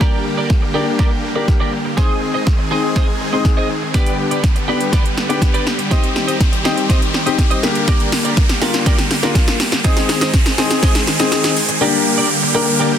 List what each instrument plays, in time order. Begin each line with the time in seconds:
Already playing: supersaw synth D3 G3 A#3 G4, grand piano A#3 D4 G4, riser
0.01 clean electric guitar G4 A#4 D5, kick, snare
0.25 muted clean electric guitar stroke
0.37 clean electric guitar G4 A#4 D5
0.50 muted clean electric guitar stroke, kick, snare
0.62 muted clean electric guitar stroke
0.74 grand piano A#3 D4 G4, clean electric guitar G4 A#4 D5
0.87 muted clean electric guitar stroke
0.99 clean electric guitar G4 A#4 D5, kick, snare
1.11 muted clean electric guitar stroke
1.23 muted clean electric guitar stroke
1.36 grand piano A#3 D4 G4, clean electric guitar G4 A#4 D5
1.48 muted clean electric guitar stroke, kick, snare
1.60 clean electric guitar G4 A#4 D5
1.72 muted clean electric guitar stroke
1.85 muted clean electric guitar stroke
1.97 supersaw synth D#3 G#3 C4 G#4, grand piano C4 D#4 G#4, clean electric guitar G#4 C5 D#5, kick, snare
2.22 muted clean electric guitar stroke
2.34 clean electric guitar G#4 C5 D#5
2.46 muted clean electric guitar stroke, kick, snare
2.59 muted clean electric guitar stroke
2.71 grand piano C4 D#4 G#4, clean electric guitar G#4 C5 D#5
2.83 muted clean electric guitar stroke
2.96 clean electric guitar G#4 C5 D#5, kick, snare
3.08 muted clean electric guitar stroke
3.20 muted clean electric guitar stroke
3.33 grand piano C4 D#4 G#4, clean electric guitar G#4 C5 D#5
3.45 muted clean electric guitar stroke, kick, snare
3.57 clean electric guitar G#4 C5 D#5
3.70 muted clean electric guitar stroke
3.82 muted clean electric guitar stroke
3.94 supersaw synth D3 G3 B3 G4, grand piano B3 D4 G4, clean electric guitar G4 B4 D5, kick, snare, closed hi-hat
4.06 closed hi-hat
4.19 muted clean electric guitar stroke
4.31 clean electric guitar G4 B4 D5, closed hi-hat
4.43 muted clean electric guitar stroke, kick, snare, closed hi-hat
4.56 muted clean electric guitar stroke, closed hi-hat
4.68 grand piano B3 D4 G4, clean electric guitar G4 B4 D5
4.81 muted clean electric guitar stroke, closed hi-hat
4.92 clean electric guitar G4 B4 D5, kick, snare, closed hi-hat
5.05 muted clean electric guitar stroke, closed hi-hat
5.17 muted clean electric guitar stroke, snare
5.29 grand piano B3 D4 G4, clean electric guitar G4 B4 D5, closed hi-hat
5.42 muted clean electric guitar stroke, kick, snare, closed hi-hat
5.54 clean electric guitar G4 B4 D5, closed hi-hat
5.66 muted clean electric guitar stroke, snare
5.78 muted clean electric guitar stroke, closed hi-hat
5.91 supersaw synth D#3 C4, grand piano C4 D#4 G4, clean electric guitar G4 C5 D#5, kick, snare, closed hi-hat
6.04 closed hi-hat
6.15 muted clean electric guitar stroke, snare
6.27 clean electric guitar G4 C5 D#5, closed hi-hat
6.40 muted clean electric guitar stroke, kick, snare, closed hi-hat
6.52 muted clean electric guitar stroke, closed hi-hat
6.65 grand piano C4 D#4 G4, clean electric guitar G4 C5 D#5, snare
6.77 muted clean electric guitar stroke, closed hi-hat
6.89 clean electric guitar G4 C5 D#5, kick, snare, closed hi-hat
7.02 muted clean electric guitar stroke, closed hi-hat
7.14 muted clean electric guitar stroke, snare
7.26 grand piano C4 D#4 G4, clean electric guitar G4 C5 D#5, closed hi-hat
7.38 muted clean electric guitar stroke, kick, snare, closed hi-hat
7.50 clean electric guitar G4 C5 D#5, closed hi-hat
7.63 supersaw synth D3 A#3, grand piano A#3 D4 G4, muted clean electric guitar stroke, snare
7.75 muted clean electric guitar stroke, closed hi-hat
7.88 clean electric guitar G4 A#4 D5, kick, snare, closed hi-hat
8.00 closed hi-hat
8.12 muted clean electric guitar stroke, snare, open hi-hat
8.25 clean electric guitar G4 A#4 D5, closed hi-hat
8.37 muted clean electric guitar stroke, kick, snare, closed hi-hat
8.49 muted clean electric guitar stroke, snare, closed hi-hat
8.62 grand piano A#3 D4 F4, clean electric guitar G4 A#4 D5, snare, open hi-hat
8.74 muted clean electric guitar stroke, snare, closed hi-hat
8.86 clean electric guitar G4 A#4 D5, kick, snare, closed hi-hat
8.98 muted clean electric guitar stroke, snare, closed hi-hat
9.11 muted clean electric guitar stroke, snare, open hi-hat
9.23 grand piano A#3 D4 F4, clean electric guitar G4 A#4 D5, snare, closed hi-hat
9.35 muted clean electric guitar stroke, kick, snare, closed hi-hat
9.48 muted clean electric guitar stroke, snare, closed hi-hat
9.60 snare, open hi-hat
9.72 muted clean electric guitar stroke, snare, closed hi-hat
9.84 supersaw synth D#3 G#3 C4 G#4, grand piano C4 D#4 G#4, clean electric guitar G#4 C5 D#5, kick, snare, closed hi-hat, shaker
9.97 snare, closed hi-hat, shaker
10.09 muted clean electric guitar stroke, snare, open hi-hat, shaker
10.21 clean electric guitar G#4 C5 D#5, snare, closed hi-hat, shaker
10.34 muted clean electric guitar stroke, kick, snare, closed hi-hat, shaker
10.46 muted clean electric guitar stroke, snare, closed hi-hat, shaker
10.58 grand piano C4 D#4 G#4, clean electric guitar G#4 C5 D#5, snare, open hi-hat, shaker
10.71 muted clean electric guitar stroke, snare, closed hi-hat, shaker
10.83 clean electric guitar G#4 C5 D#5, kick, snare, closed hi-hat, shaker
10.95 muted clean electric guitar stroke, snare, closed hi-hat, shaker
11.07 muted clean electric guitar stroke, snare, open hi-hat, shaker
11.19 grand piano C4 D#4 G#4, clean electric guitar G#4 C5 D#5, snare, closed hi-hat, shaker
11.32 muted clean electric guitar stroke, snare, closed hi-hat, shaker
11.44 muted clean electric guitar stroke, snare, closed hi-hat, shaker
11.57 open hi-hat, shaker
11.69 muted clean electric guitar stroke, closed hi-hat, shaker
11.81 supersaw synth D3 G3 A#3 G4, grand piano A#3 D4 G4, clean electric guitar G4 A#4 D5
12.06 muted clean electric guitar stroke
12.18 clean electric guitar G4 A#4 D5
12.30 muted clean electric guitar stroke
12.42 muted clean electric guitar stroke
12.55 grand piano A#3 D4 A#4, clean electric guitar G4 A#4 D5
12.67 muted clean electric guitar stroke
12.79 clean electric guitar G4 A#4 D5
12.92 muted clean electric guitar stroke